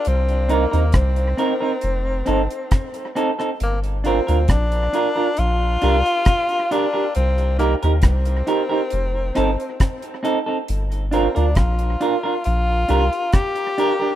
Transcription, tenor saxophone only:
\new Staff \with { instrumentName = "Tenor saxophone" } { \time 4/4 \key g \minor \tempo 4 = 68 c'8 bes8 c'2~ c'8 r8 | bes8 c'8 d'4 f'4. d'8 | c'8 bes8 c'2~ c'8 r8 | r8 c'16 d'16 f'4 f'4 g'4 | }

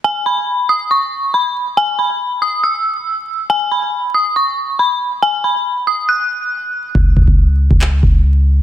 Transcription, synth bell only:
\new Staff \with { instrumentName = "Synth bell" } { \time 4/4 \key cis \minor \tempo 4 = 139 gis''8 b''4 dis'''8 cis'''4 b''8 r8 | gis''8 b''4 dis'''8 e'''2 | gis''8 b''4 dis'''8 cis'''4 b''8 r8 | gis''8 b''4 dis'''8 fis'''2 |
r1 | }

